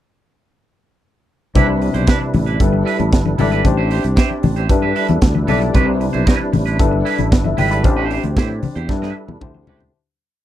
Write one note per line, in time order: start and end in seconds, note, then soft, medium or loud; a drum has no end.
1.55 1.89 C2 loud
1.55 2.39 C3 medium
1.55 2.59 C3 medium
1.55 3.63 G3 medium
1.55 2.39 C4 medium
1.55 1.74 D4 medium
1.55 2.40 D4 medium
1.55 7.80 D4 medium
1.55 2.40 E4 medium
1.55 3.63 E4 medium
1.55 1.68 E4 medium
1.55 2.40 B4 medium
1.55 2.59 B4 medium
1.55 1.67 B4 medium
1.55 kick medium
1.55 closed hi-hat medium
1.55 muted conga soft
1.55 low conga medium
1.68 muted clean electric guitar stroke soft
1.68 muted conga soft
1.81 muted clean electric guitar stroke soft
1.81 open hi-hat medium
1.94 2.06 B1 medium
1.94 2.06 D4 soft
1.94 2.06 E4 medium
1.94 2.08 C5 medium
1.94 closed hi-hat soft
2.07 2.26 D4 medium
2.07 2.20 E4 medium
2.07 2.19 B4 medium
2.07 kick loud
2.07 snare loud
2.07 closed hi-hat medium
2.07 muted conga soft
2.20 muted clean electric guitar stroke soft
2.20 muted conga soft
2.34 2.56 A1 medium
2.34 muted clean electric guitar stroke soft
2.34 open hi-hat medium
2.34 high conga medium
2.34 low conga medium
2.46 2.59 D4 soft
2.46 2.58 E4 soft
2.46 2.59 B4 medium
2.46 closed hi-hat soft
2.60 2.82 G1 loud
2.60 3.23 G3 medium
2.60 3.23 D4 medium
2.60 3.24 E4 medium
2.60 3.64 A4 medium
2.60 3.24 A4 medium
2.60 3.64 B4 medium
2.60 3.24 B4 medium
2.60 muted clean electric guitar stroke soft
2.60 kick loud
2.60 closed hi-hat medium
2.73 muted clean electric guitar stroke soft
2.73 muted conga soft
2.85 3.04 E4 medium
2.85 2.98 A4 medium
2.85 2.97 B4 medium
2.85 open hi-hat medium
2.99 3.11 A1 medium
2.99 muted clean electric guitar stroke soft
2.99 closed hi-hat soft
2.99 high conga medium
3.12 3.35 G1 medium
3.12 muted clean electric guitar stroke soft
3.12 kick loud
3.12 snare loud
3.12 closed hi-hat medium
3.12 muted conga soft
3.26 muted clean electric guitar stroke soft
3.26 high conga medium
3.38 3.61 G#1 medium
3.38 3.60 G3 medium
3.38 3.60 D4 medium
3.38 3.52 E4 medium
3.38 3.60 E4 medium
3.38 3.51 A4 medium
3.38 3.60 A4 medium
3.38 3.50 B4 medium
3.38 3.61 D5 medium
3.38 open hi-hat medium
3.38 low conga medium
3.51 3.63 E4 medium
3.51 3.65 A4 medium
3.51 3.65 B4 medium
3.51 closed hi-hat soft
3.65 3.98 A1 loud
3.65 4.69 C4 medium
3.65 4.49 D4 medium
3.65 4.69 G4 medium
3.65 4.50 G4 medium
3.65 4.50 C5 medium
3.65 muted clean electric guitar stroke soft
3.65 kick medium
3.65 closed hi-hat medium
3.65 muted conga soft
3.65 low conga medium
3.77 3.89 E4 medium
3.77 3.90 G4 medium
3.77 3.91 C5 medium
3.77 muted conga soft
3.91 4.05 E4 medium
3.91 4.03 G4 medium
3.91 4.02 C5 medium
3.91 open hi-hat medium
4.03 4.15 C2 medium
4.03 muted clean electric guitar stroke soft
4.03 closed hi-hat soft
4.16 4.35 E4 medium
4.16 4.30 G4 medium
4.16 4.29 C5 medium
4.16 kick loud
4.16 snare loud
4.16 closed hi-hat medium
4.16 muted conga soft
4.30 muted clean electric guitar stroke soft
4.30 muted conga soft
4.43 4.66 A1 medium
4.43 muted clean electric guitar stroke soft
4.43 open hi-hat medium
4.43 high conga medium
4.43 low conga medium
4.56 4.68 E4 soft
4.56 4.69 G4 soft
4.56 4.70 C5 medium
4.56 closed hi-hat soft
4.69 4.92 G2 medium
4.69 5.33 G3 medium
4.69 6.77 G3 medium
4.69 5.33 D4 medium
4.69 5.74 E4 soft
4.69 5.33 E4 medium
4.69 5.74 A4 medium
4.69 5.33 A4 medium
4.69 5.74 B4 medium
4.69 5.33 B4 medium
4.69 muted clean electric guitar stroke soft
4.69 kick loud
4.69 closed hi-hat medium
4.82 4.94 E4 medium
4.82 4.95 A4 medium
4.82 4.95 B4 medium
4.82 muted conga soft
4.95 5.14 E4 medium
4.95 5.08 A4 medium
4.95 5.07 B4 medium
4.95 open hi-hat medium
5.08 5.20 E2 medium
5.08 muted clean electric guitar stroke soft
5.08 closed hi-hat soft
5.08 high conga medium
5.22 5.44 D2 medium
5.22 kick loud
5.22 snare loud
5.22 closed hi-hat medium
5.35 muted clean electric guitar stroke medium
5.35 muted conga soft
5.35 high conga medium
5.47 5.71 B1 medium
5.47 5.69 G3 medium
5.47 5.69 D4 medium
5.47 5.66 E4 medium
5.47 5.70 E4 medium
5.47 5.60 A4 medium
5.47 5.70 A4 medium
5.47 5.59 B4 medium
5.47 5.70 D5 medium
5.47 open hi-hat medium
5.47 low conga medium
5.61 muted clean electric guitar stroke soft
5.61 closed hi-hat soft
5.74 6.08 C2 loud
5.74 6.59 C3 medium
5.74 6.79 C3 medium
5.74 6.59 C4 medium
5.74 5.93 D4 medium
5.74 6.59 D4 medium
5.74 5.87 E4 medium
5.74 6.60 E4 medium
5.74 6.79 E4 medium
5.74 5.86 B4 medium
5.74 6.78 B4 medium
5.74 6.60 B4 medium
5.74 kick medium
5.74 closed hi-hat medium
5.74 low conga medium
5.87 muted clean electric guitar stroke soft
6.00 muted clean electric guitar stroke soft
6.00 open hi-hat medium
6.13 6.25 B1 medium
6.13 6.25 D4 soft
6.13 6.26 E4 medium
6.13 6.27 C5 medium
6.13 closed hi-hat soft
6.26 6.47 D4 medium
6.26 6.39 E4 medium
6.26 6.38 B4 medium
6.26 kick loud
6.26 snare loud
6.26 closed hi-hat medium
6.39 muted clean electric guitar stroke soft
6.39 muted conga soft
6.52 6.81 A1 medium
6.52 muted clean electric guitar stroke soft
6.52 open hi-hat medium
6.52 high conga medium
6.52 low conga medium
6.66 6.78 D4 soft
6.66 6.77 E4 soft
6.66 6.78 B4 medium
6.66 closed hi-hat soft
6.79 7.02 G1 loud
6.79 7.43 G3 medium
6.79 7.84 G3 medium
6.79 7.43 D4 medium
6.79 7.43 E4 medium
6.79 7.83 E4 medium
6.79 7.83 A4 medium
6.79 7.43 A4 medium
6.79 7.83 B4 medium
6.79 7.43 B4 medium
6.79 muted clean electric guitar stroke soft
6.79 kick loud
6.79 closed hi-hat medium
6.92 muted clean electric guitar stroke soft
6.92 muted conga soft
7.05 7.24 E4 medium
7.05 7.18 A4 medium
7.05 7.17 B4 medium
7.05 open hi-hat medium
7.18 7.32 A1 medium
7.18 muted clean electric guitar stroke soft
7.18 closed hi-hat soft
7.18 high conga medium
7.31 7.54 G1 loud
7.31 muted clean electric guitar stroke soft
7.31 kick loud
7.31 snare loud
7.31 closed hi-hat medium
7.44 7.58 E5 medium
7.44 muted clean electric guitar stroke soft
7.44 muted conga soft
7.44 high conga medium
7.57 7.85 G#1 medium
7.57 7.71 E4 medium
7.57 7.70 A4 medium
7.57 7.69 B4 medium
7.57 7.70 G5 medium
7.57 open hi-hat medium
7.57 low conga medium
7.70 7.83 E4 soft
7.70 7.84 A4 medium
7.70 7.84 B4 medium
7.70 7.96 B5 medium
7.70 closed hi-hat soft
7.84 8.18 A1 loud
7.84 8.88 C4 medium
7.84 8.68 D4 medium
7.84 9.40 D4 medium
7.84 8.69 G4 medium
7.84 8.88 G4 medium
7.84 8.69 C5 medium
7.84 muted clean electric guitar stroke soft
7.84 kick loud
7.84 closed hi-hat medium
7.84 low conga medium
7.97 8.09 E4 medium
7.97 8.10 G4 medium
7.97 8.11 C5 medium
8.10 8.25 E4 medium
8.10 8.24 G4 medium
8.10 8.23 C5 medium
8.10 open hi-hat medium
8.23 8.35 D2 medium
8.23 muted clean electric guitar stroke soft
8.23 closed hi-hat soft
8.23 high conga medium
8.37 8.59 A2 medium
8.37 8.55 E4 medium
8.37 8.49 G4 medium
8.37 8.49 C5 medium
8.37 kick loud
8.37 snare loud
8.37 closed hi-hat medium
8.37 muted conga soft
8.50 muted clean electric guitar stroke soft
8.50 muted conga soft
8.63 muted clean electric guitar stroke soft
8.63 open hi-hat medium
8.63 high conga medium
8.63 low conga medium
8.76 8.87 E2 medium
8.76 8.88 E4 soft
8.76 8.89 G4 medium
8.76 8.90 C5 medium
8.76 closed hi-hat soft
8.89 9.11 G2 medium
8.89 9.31 G3 medium
8.89 9.41 G3 medium
8.89 9.31 D4 medium
8.89 9.93 E4 medium
8.89 9.31 E4 medium
8.89 9.41 A4 soft
8.89 9.32 A4 medium
8.89 9.41 B4 medium
8.89 9.32 B4 medium
8.89 muted clean electric guitar stroke soft
8.89 kick loud
8.89 snare medium
8.89 muted conga soft
9.02 9.14 E4 medium
9.02 9.14 A4 medium
9.02 9.15 B4 medium
9.02 snare medium
9.02 muted conga soft
9.15 muted clean electric guitar stroke soft
9.28 9.40 E2 medium
9.28 muted clean electric guitar stroke soft
9.28 high tom medium
9.28 high conga medium
9.41 9.64 D2 loud
9.41 9.62 D3 medium
9.41 9.93 D3 medium
9.41 9.93 A3 medium
9.41 9.93 C4 medium
9.41 9.62 D4 medium
9.41 9.63 E4 medium
9.41 9.93 G4 medium
9.41 9.63 G4 medium
9.41 9.63 C5 medium
9.41 kick loud
9.41 mid tom medium
9.41 muted conga soft
9.55 muted clean electric guitar stroke soft
9.55 high conga medium
9.67 9.90 C#2 medium
9.67 9.89 D3 medium
9.67 9.88 D4 medium
9.67 9.89 D4 medium
9.67 9.89 E4 medium
9.67 9.80 G4 medium
9.67 9.89 G4 medium
9.67 9.79 C5 medium
9.67 9.89 C5 medium
9.67 floor tom loud
9.67 low conga medium
9.80 muted clean electric guitar stroke soft
9.80 floor tom medium